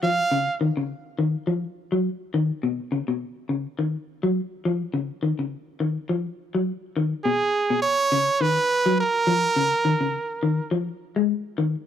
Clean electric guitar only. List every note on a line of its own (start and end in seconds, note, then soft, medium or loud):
0.03 0.19 F3 medium
0.32 0.48 C#3 medium
0.61 0.70 D#3 medium
0.77 0.93 C#3 medium
1.19 1.35 D#3 medium
1.47 1.63 F3 medium
1.92 2.08 F#3 medium
2.34 2.50 D#3 medium
2.63 2.79 B2 medium
2.92 3.01 C#3 medium
3.08 3.24 B2 medium
3.49 3.66 C#3 medium
3.79 3.95 D#3 medium
4.23 4.40 F#3 medium
4.65 4.82 F3 medium
4.94 5.10 C#3 medium
5.23 5.32 D#3 medium
5.39 5.55 C#3 medium
5.80 5.97 D#3 medium
6.09 6.26 F3 medium
6.55 6.71 F#3 medium
6.97 7.13 D#3 medium
7.25 7.42 B2 medium
7.70 7.87 B2 medium
8.12 8.28 C#3 medium
8.41 8.57 D#3 medium
8.86 9.02 F#3 medium
9.27 9.43 F3 medium
9.56 9.73 C#3 medium
9.85 9.94 D#3 medium
10.01 10.17 C#3 medium
10.43 10.59 D#3 medium
10.71 10.88 F3 medium
11.16 11.32 G#3 medium
11.58 11.74 D#3 medium